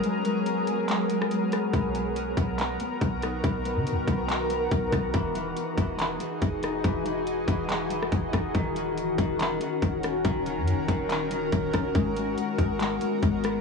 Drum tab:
HH |x-x-x-x-x-x-x-x-|x-x-x-x-x-x-x-x-|x-x-x-x-x-x-x-x-|x-x-x-x-x-x-x-x-|
CP |--------x-------|--------x-------|--------x-------|--------x-------|
SD |-----------r--r-|--------------r-|--------------r-|--------------r-|
BD |----------------|o-----o-----o---|o-----o-----o-o-|o-----o-----o---|

HH |x-x-x-x-x-x-x-x-|x-x-x-x-x-x-x-x-|x-x-x-x-x-x-x-x-|x-x-x-x-x-x-x-x-|
CP |--------x-------|--------x-------|--------x-------|--------x-------|
SD |-----------r--r-|--------------r-|--------------r-|--------------r-|
BD |o-----o-----o-o-|o-----o-----o---|o-----o-----o-o-|o-----o-----o---|